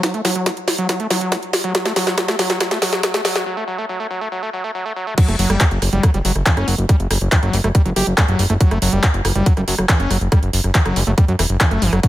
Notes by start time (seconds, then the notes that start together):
0.03 F#3, kick, snare, closed hi-hat
0.14 A3, closed hi-hat
0.25 F#3, snare, open hi-hat
0.36 F#3, closed hi-hat
0.46 F#3, kick, snare, closed hi-hat
0.57 closed hi-hat
0.68 snare, open hi-hat
0.78 F#3, closed hi-hat
0.89 kick, snare, closed hi-hat
1.00 A3, closed hi-hat
1.10 F#3, snare, open hi-hat
1.21 F#3, closed hi-hat
1.32 F#3, kick, snare, closed hi-hat
1.43 closed hi-hat
1.53 snare, open hi-hat
1.64 F#3, closed hi-hat
1.75 kick, snare, closed hi-hat
1.85 A3, snare, closed hi-hat
1.96 F#3, snare, open hi-hat
2.07 F#3, snare, closed hi-hat
2.18 F#3, kick, snare, closed hi-hat
2.28 A3, snare, closed hi-hat
2.39 F#3, snare, open hi-hat
2.50 F#3, snare, closed hi-hat
2.60 F#3, kick, snare, closed hi-hat
2.71 A3, snare, closed hi-hat
2.82 F#3, snare, open hi-hat
2.93 F#3, snare, closed hi-hat
3.03 kick, snare, closed hi-hat
3.14 A3, snare, closed hi-hat
3.25 F#3, snare, open hi-hat
3.35 F#3, snare, closed hi-hat
3.46 F#3
3.57 A3
3.68 F#3
3.78 A3
3.89 F#3
4.00 A3
4.11 F#3
4.21 A3
4.32 F#3
4.43 A3
4.53 F#3
4.64 A3
4.75 F#3
4.86 A3
4.96 F#3
5.07 A3
5.18 F#3, kick, closed hi-hat, crash
5.28 F#1 A3, cross-stick, closed hi-hat
5.39 F#1 F#3, open hi-hat
5.50 F#1 G3, cross-stick, closed hi-hat
5.61 F#3, kick, clap, closed hi-hat
5.71 F#1, closed hi-hat
5.82 F#1, cross-stick, open hi-hat
5.93 F#1 G3, closed hi-hat
6.03 F#3, kick, cross-stick, closed hi-hat
6.14 F#1 G3, closed hi-hat
6.25 F#1 F#3, open hi-hat
6.36 F#1, cross-stick, closed hi-hat
6.46 E3, kick, clap, closed hi-hat
6.57 F#1 C#4, cross-stick, closed hi-hat
6.68 F#1 F#3, open hi-hat
6.78 F#1, closed hi-hat
6.89 G3, kick, cross-stick, closed hi-hat
7.00 F#1, closed hi-hat
7.11 F#1, cross-stick, open hi-hat
7.21 F#1, closed hi-hat
7.32 E3, kick, clap, closed hi-hat
7.43 F#1 F#3, cross-stick, closed hi-hat
7.53 F#1 G3, open hi-hat
7.64 F#1 A3, cross-stick, closed hi-hat
7.75 G3, kick, closed hi-hat
7.86 F#1 F#3, closed hi-hat
7.96 F#1 G4, cross-stick, open hi-hat
8.07 F#1, closed hi-hat
8.18 G3, kick, cross-stick, clap, closed hi-hat
8.28 F#1 F#3, closed hi-hat
8.39 F#1 G3, open hi-hat
8.50 F#1 A3, cross-stick, closed hi-hat
8.61 F#3, kick, closed hi-hat
8.71 F#1 A3, cross-stick, closed hi-hat
8.82 F#1 F#3, open hi-hat
8.93 F#1 G3
9.03 F#3, kick, cross-stick, clap, closed hi-hat
9.14 F#1, closed hi-hat
9.25 F#1, cross-stick, open hi-hat
9.36 F#1 G3, closed hi-hat
9.46 F#3, kick, closed hi-hat
9.57 F#1 G3, cross-stick, closed hi-hat
9.68 F#1 F#3, open hi-hat
9.78 F#1, cross-stick
9.89 E3, kick, clap, closed hi-hat
10.00 F#1 C#4, closed hi-hat
10.11 F#1 F#3, cross-stick, open hi-hat
10.21 F#1, closed hi-hat
10.32 G3, kick, cross-stick, closed hi-hat
10.43 F#1, closed hi-hat
10.53 F#1, open hi-hat
10.64 F#1, cross-stick, closed hi-hat
10.75 E3, kick, clap, closed hi-hat
10.86 F#1 F#3, cross-stick, closed hi-hat
10.96 F#1 G3, open hi-hat
11.07 F#1 A3, closed hi-hat
11.18 G3, kick, cross-stick, closed hi-hat
11.28 F#2 F#3, closed hi-hat
11.39 E1 E3, cross-stick, open hi-hat
11.50 F#1
11.61 E3, kick, clap, closed hi-hat
11.71 F#1 A3, cross-stick, closed hi-hat
11.82 G1 E3, open hi-hat
11.93 F#1 F#3, cross-stick, closed hi-hat
12.03 F#3, kick, closed hi-hat